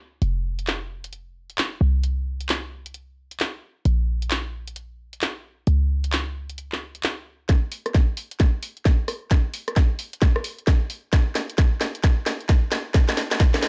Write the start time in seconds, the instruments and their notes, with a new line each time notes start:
Already playing: 808-style bass C#2
0.22 808-style bass F1, closed hi-hat
0.59 closed hi-hat
0.67 clap, closed hi-hat
1.04 closed hi-hat
1.13 closed hi-hat
1.50 closed hi-hat
1.58 clap, closed hi-hat
1.81 808-style bass C2
2.04 closed hi-hat
2.41 closed hi-hat
2.49 clap, closed hi-hat
2.86 closed hi-hat
2.94 closed hi-hat
3.31 closed hi-hat
3.40 clap, closed hi-hat
3.85 808-style bass A#1, closed hi-hat
4.22 closed hi-hat
4.31 clap, closed hi-hat
4.68 closed hi-hat
4.76 closed hi-hat
5.13 closed hi-hat
5.22 clap, closed hi-hat
5.67 808-style bass C#2, closed hi-hat
6.04 closed hi-hat
6.13 clap, closed hi-hat
6.50 closed hi-hat
6.58 closed hi-hat
6.72 clap
6.95 closed hi-hat
7.03 clap, closed hi-hat
7.49 kick, snare, closed hi-hat
7.72 open hi-hat
7.86 cross-stick, closed hi-hat
7.94 kick, snare, closed hi-hat
8.17 open hi-hat
8.31 closed hi-hat
8.40 kick, snare, closed hi-hat
8.63 open hi-hat
8.77 closed hi-hat
8.85 kick, snare, closed hi-hat
9.08 cross-stick, open hi-hat
9.31 kick, snare, closed hi-hat
9.54 open hi-hat
9.68 cross-stick, closed hi-hat
9.76 kick, snare, closed hi-hat
9.99 open hi-hat
10.13 closed hi-hat
10.22 kick, snare, closed hi-hat
10.36 cross-stick
10.44 open hi-hat
10.59 closed hi-hat
10.67 kick, snare, closed hi-hat
10.90 open hi-hat
11.13 kick, snare, closed hi-hat
11.35 snare, open hi-hat
11.50 closed hi-hat
11.58 kick, snare, closed hi-hat
11.81 snare, open hi-hat
11.95 closed hi-hat
12.04 kick, snare, closed hi-hat
12.26 snare, open hi-hat
12.41 closed hi-hat
12.49 kick, snare, closed hi-hat
12.72 snare, open hi-hat
12.94 kick, snare, closed hi-hat
13.09 snare
13.17 snare, open hi-hat
13.31 snare, closed hi-hat
13.40 kick, snare, closed hi-hat
13.54 snare
13.63 snare, open hi-hat